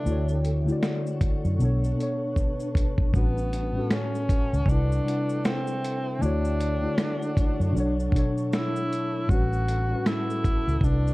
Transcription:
0.00 0.59 D3 medium
0.00 0.45 D4 medium
0.05 0.69 D2 loud
0.05 0.60 A3 medium
0.05 3.10 D4 medium
0.05 0.61 E4 medium
0.05 0.62 F#4 medium
0.05 1.58 A4 medium
0.05 1.58 F#5 medium
0.05 3.10 C#6 medium
0.05 shaker medium
0.11 0.63 C#5 medium
0.29 shaker soft
0.45 closed hi-hat medium
0.45 shaker soft
0.64 1.58 D3 medium
0.64 1.59 A3 medium
0.64 1.60 E4 medium
0.64 shaker soft
0.70 1.61 F#4 medium
0.70 1.62 D5 medium
0.83 finger snap medium
0.83 snare loud
0.83 shaker medium
1.07 shaker soft
1.21 kick loud
1.21 closed hi-hat medium
1.21 shaker medium
1.45 1.57 F#2 medium
1.45 shaker soft
1.57 1.92 B1 loud
1.57 1.93 B2 medium
1.57 1.95 B3 medium
1.57 1.96 D4 medium
1.57 3.12 B4 medium
1.57 3.12 A5 medium
1.57 shaker medium
1.63 1.97 A4 medium
1.63 1.97 C#5 medium
1.84 shaker soft
1.94 3.02 B2 medium
1.94 3.04 B3 medium
1.99 3.04 D4 medium
1.99 3.05 A4 medium
1.99 3.06 C#5 loud
1.99 closed hi-hat medium
1.99 shaker soft
2.36 kick medium
2.36 shaker medium
2.60 shaker soft
2.75 kick medium
2.75 closed hi-hat medium
2.75 shaker medium
2.98 kick medium
3.11 3.78 A1 loud
3.11 3.67 A2 medium
3.11 3.68 G3 medium
3.11 3.68 C#4 medium
3.11 6.18 A4 medium
3.11 4.66 F#5 medium
3.11 4.66 A5 medium
3.11 4.66 C#6 medium
3.11 kick loud
3.15 3.94 B3 medium
3.15 3.69 F#4 medium
3.15 3.70 B4 medium
3.15 shaker medium
3.38 shaker soft
3.53 closed hi-hat medium
3.53 shaker medium
3.72 4.66 A2 medium
3.72 4.66 G3 medium
3.72 4.68 C#4 medium
3.78 4.69 F#4 medium
3.78 4.69 A4 medium
3.91 4.70 C#4 loud
3.91 finger snap medium
3.91 snare loud
3.91 shaker medium
4.15 shaker soft
4.29 kick loud
4.29 closed hi-hat medium
4.29 shaker medium
4.53 4.65 C#2 medium
4.53 shaker soft
4.65 4.98 C2 loud
4.65 5.01 C3 medium
4.65 5.03 G3 medium
4.65 5.03 D4 medium
4.65 6.20 E5 medium
4.65 6.20 G5 medium
4.65 kick medium
4.69 5.47 D4 loud
4.69 5.04 E4 medium
4.69 5.05 B4 medium
4.69 shaker medium
4.92 shaker soft
5.04 6.11 C3 medium
5.04 6.12 G3 medium
5.04 6.12 D4 medium
5.08 6.14 E4 medium
5.08 6.14 B4 medium
5.08 closed hi-hat medium
5.08 shaker soft
5.29 shaker soft
5.45 6.24 C4 medium
5.45 finger snap medium
5.45 snare loud
5.45 shaker medium
5.67 shaker medium
5.85 closed hi-hat medium
5.85 shaker medium
6.18 6.85 D2 loud
6.18 6.74 D3 medium
6.18 6.75 A3 medium
6.18 9.26 D4 medium
6.18 8.28 D4 loud
6.18 6.76 E4 medium
6.18 7.73 A4 medium
6.18 7.73 F#5 medium
6.18 10.78 C#6 medium
6.23 6.77 F#4 medium
6.23 6.78 C#5 medium
6.23 shaker medium
6.45 shaker medium
6.61 closed hi-hat medium
6.61 shaker medium
6.80 7.73 D3 medium
6.80 7.74 A3 medium
6.80 7.75 E4 medium
6.85 7.76 F#4 medium
6.85 7.77 A4 medium
6.98 finger snap medium
6.98 snare loud
6.98 shaker medium
7.22 shaker soft
7.37 kick loud
7.37 closed hi-hat medium
7.37 shaker medium
7.60 7.73 F#2 medium
7.60 shaker soft
7.72 8.07 B1 loud
7.72 8.09 B2 medium
7.72 8.10 F#3 medium
7.72 11.14 A4 medium
7.72 9.27 A5 medium
7.76 8.11 D4 medium
7.76 8.12 A4 medium
7.76 8.13 C#5 medium
7.76 shaker medium
8.00 shaker soft
8.12 9.19 B2 medium
8.12 9.20 F#3 medium
8.12 9.20 D4 medium
8.12 kick medium
8.16 9.21 A4 medium
8.16 9.22 C#5 loud
8.16 closed hi-hat medium
8.16 shaker soft
8.38 shaker soft
8.53 9.31 E4 loud
8.53 finger snap medium
8.53 snare loud
8.53 shaker medium
8.76 shaker medium
8.93 closed hi-hat medium
8.93 shaker medium
9.27 9.93 A1 loud
9.27 9.82 A2 medium
9.27 9.83 G3 medium
9.27 9.84 C#4 medium
9.27 10.09 F#4 loud
9.27 10.80 F#5 medium
9.27 11.14 A5 medium
9.27 kick loud
9.27 shaker medium
9.32 9.85 F#4 medium
9.32 9.86 B4 medium
9.53 shaker soft
9.68 closed hi-hat medium
9.68 shaker soft
9.88 10.82 A2 medium
9.88 10.81 G3 medium
9.88 10.83 C#4 medium
9.93 10.84 F#4 medium
9.93 10.85 B4 medium
10.06 10.86 E4 loud
10.06 finger snap medium
10.06 snare loud
10.06 shaker medium
10.30 shaker soft
10.44 kick loud
10.44 closed hi-hat medium
10.44 shaker medium
10.67 10.80 C#2 medium
10.67 shaker soft
10.80 11.14 C2 loud
10.80 11.14 C3 medium
10.80 11.14 G3 medium
10.80 11.14 D4 medium
10.80 11.14 E5 medium
10.80 11.14 G5 loud
10.80 kick loud
10.80 shaker medium
10.84 11.14 D4 loud
10.84 11.14 E4 medium
10.84 11.14 B4 medium
11.07 shaker soft

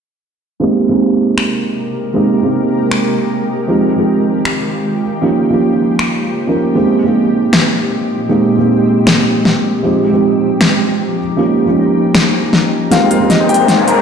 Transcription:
0.60 3.65 C3 medium
0.60 0.87 G#3 medium
0.60 4.99 G#3 medium
0.60 0.87 A#3 medium
0.60 0.88 C4 medium
0.60 0.88 D#4 medium
0.60 3.65 G4 medium
0.60 0.88 G4 medium
0.60 3.65 A#4 medium
0.88 2.11 G#3 medium
0.88 2.12 A#3 medium
0.88 2.12 C4 medium
0.88 2.13 D#4 medium
0.92 2.13 G4 medium
1.38 finger snap medium
2.14 2.40 G#3 medium
2.14 2.41 A#3 medium
2.14 2.42 C4 medium
2.14 2.42 D#4 medium
2.14 2.42 G4 loud
2.42 3.65 G#3 medium
2.42 3.66 A#3 medium
2.42 3.66 C4 medium
2.42 3.67 D#4 medium
2.42 3.67 G4 medium
2.91 finger snap medium
3.67 5.02 D#3 medium
3.67 3.94 F3 medium
3.67 3.95 G#3 medium
3.67 3.95 C4 medium
3.67 3.96 D#4 medium
3.67 5.02 F4 medium
3.67 5.02 G4 medium
3.67 3.96 G4 loud
3.96 5.01 F3 medium
3.96 5.01 G#3 medium
3.96 5.02 C4 medium
3.96 5.02 D#4 medium
4.00 5.03 G4 medium
4.45 finger snap medium
5.03 6.74 C#3 medium
5.03 6.74 F3 medium
5.03 6.74 D#4 medium
5.03 12.88 G4 medium
5.21 5.48 F3 medium
5.21 5.49 A#3 medium
5.21 5.49 C#4 medium
5.21 5.49 D#4 medium
5.21 5.50 G4 medium
5.50 6.45 F3 medium
5.50 6.45 A#3 medium
5.50 6.46 C#4 medium
5.50 6.46 D#4 medium
5.54 6.47 G4 medium
5.99 finger snap medium
6.47 6.73 F3 medium
6.47 6.74 A#3 medium
6.47 6.74 C#4 medium
6.47 6.74 D#4 medium
6.47 6.74 A#4 medium
6.75 9.81 A#2 medium
6.75 7.02 G#3 medium
6.75 11.14 G#3 medium
6.75 7.03 A#3 medium
6.75 7.03 C4 medium
6.75 9.81 C4 medium
6.75 7.03 D#4 medium
6.75 7.04 G4 loud
7.04 8.27 G#3 medium
7.04 8.27 A#3 medium
7.04 8.28 C4 medium
7.04 8.28 D#4 medium
7.08 8.29 G4 medium
7.53 finger snap medium
7.53 snare loud
8.29 8.56 G#3 medium
8.29 8.57 A#3 medium
8.29 8.57 C4 medium
8.29 8.57 D#4 medium
8.29 8.57 G4 loud
8.57 9.81 G#3 medium
8.57 9.81 A#3 medium
8.57 9.82 C4 medium
8.57 9.82 D#4 medium
8.61 9.83 G4 medium
9.07 finger snap medium
9.07 snare loud
9.45 snare medium
9.83 10.10 F3 medium
9.83 12.88 F3 medium
9.83 10.11 G#3 medium
9.83 10.11 C4 medium
9.83 12.88 D#4 medium
9.83 10.11 D#4 medium
9.83 10.11 G4 medium
10.11 11.16 F3 medium
10.11 11.17 G#3 medium
10.11 11.17 C4 medium
10.11 11.18 D#4 medium
10.15 11.18 G4 medium
10.61 finger snap medium
10.61 snare loud
11.18 12.90 C#4 medium
11.37 11.64 F3 medium
11.37 11.64 A#3 medium
11.37 11.65 C#4 medium
11.37 11.65 D#4 medium
11.37 11.65 G4 loud
11.65 12.88 F3 medium
11.65 12.89 A#3 medium
11.65 12.89 C#4 medium
11.65 12.90 D#4 medium
11.65 12.90 G4 medium
12.15 finger snap medium
12.15 snare loud
12.53 snare medium
12.90 14.02 C3 medium
12.90 13.17 G#3 medium
12.90 13.19 G#3 medium
12.90 14.02 G#3 medium
12.90 13.18 A#3 medium
12.90 14.02 A#3 medium
12.90 13.19 C4 medium
12.90 13.19 D#4 medium
12.90 13.08 F4 medium
12.90 14.02 G4 medium
12.90 13.19 G4 loud
12.90 13.19 A#4 medium
12.90 13.19 C5 medium
12.90 13.08 F5 medium
12.90 13.19 G5 loud
12.90 snare soft
12.90 closed hi-hat medium
12.90 riser medium
13.11 13.28 F4 medium
13.11 13.28 F5 medium
13.11 closed hi-hat medium
13.19 14.02 G#3 medium
13.19 13.28 G#3 medium
13.19 14.02 A#3 medium
13.19 14.02 C4 medium
13.19 13.28 D#4 medium
13.19 14.02 D#4 medium
13.19 14.02 G4 medium
13.19 13.28 A#4 medium
13.19 13.28 C5 medium
13.19 13.28 A#5 medium
13.30 13.47 D#4 medium
13.30 13.47 D#5 medium
13.30 snare soft
13.30 closed hi-hat medium
13.40 13.57 G#3 medium
13.40 13.57 D#4 medium
13.40 13.57 A#4 medium
13.40 13.57 C5 medium
13.40 13.57 G5 medium
13.49 13.83 G4 medium
13.49 13.83 G5 medium
13.49 closed hi-hat soft
13.54 closed hi-hat medium
13.59 13.66 G#3 medium
13.59 13.66 D#4 medium
13.59 13.66 A#4 medium
13.59 13.66 C5 medium
13.59 13.66 G5 medium
13.68 13.76 G#3 medium
13.68 13.76 D#4 medium
13.68 13.76 A#4 medium
13.68 13.76 C5 medium
13.68 13.76 G5 medium
13.68 snare soft
13.68 closed hi-hat medium
13.79 13.95 G#3 medium
13.79 13.95 D#4 medium
13.79 13.95 A#4 medium
13.79 13.95 C5 medium
13.79 13.95 G#5 loud
13.88 14.02 A#4 medium
13.88 14.02 A#5 medium
13.88 closed hi-hat medium
13.98 14.02 G#3 medium
13.98 14.02 D#4 medium
13.98 14.02 A#4 medium
13.98 14.02 C5 medium
13.98 14.02 G5 medium

